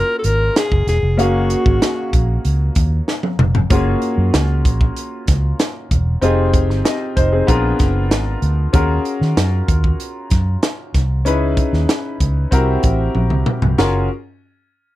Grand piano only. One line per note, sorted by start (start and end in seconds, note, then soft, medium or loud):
0.00 1.14 A#3 medium
0.00 1.14 C#4 medium
0.00 1.15 F4 medium
0.00 1.15 F#4 medium
0.00 1.15 G#4 medium
1.17 3.65 A#3 medium
1.17 3.66 C#4 medium
1.17 3.66 F#4 medium
1.17 3.67 G#4 medium
1.17 3.66 F5 medium
3.70 6.18 A#3 medium
3.70 6.18 C#4 medium
3.70 6.19 F4 medium
3.70 6.19 F#4 medium
3.70 6.19 G#4 medium
6.21 6.83 C4 medium
6.21 6.84 D#4 medium
6.21 6.84 F4 medium
6.21 6.84 G4 medium
6.21 6.85 G#4 medium
6.85 7.15 G4 medium
6.85 7.15 D#5 medium
7.16 7.32 D#4 medium
7.16 7.31 C5 medium
7.33 7.63 C4 medium
7.33 7.48 G#4 medium
7.47 8.71 B3 medium
7.47 8.71 D4 medium
7.47 8.72 F4 medium
7.47 8.72 G#4 medium
7.47 8.72 A#4 medium
8.73 11.21 C#4 medium
8.73 11.22 F4 medium
8.73 11.22 F#4 medium
8.73 11.22 G#4 medium
8.73 11.22 A#4 medium
11.25 12.49 C#4 medium
11.25 12.49 D#4 medium
11.25 12.50 E4 medium
11.25 12.50 G#4 medium
11.25 12.50 B4 medium
12.51 13.75 C4 medium
12.51 13.75 E4 medium
12.51 13.76 F#4 medium
12.51 13.76 G4 medium
12.51 13.76 A#4 medium
13.78 14.07 C#4 medium
13.78 14.07 F4 medium
13.78 14.07 F#4 medium
13.78 14.07 G#4 medium
13.78 14.07 A#4 medium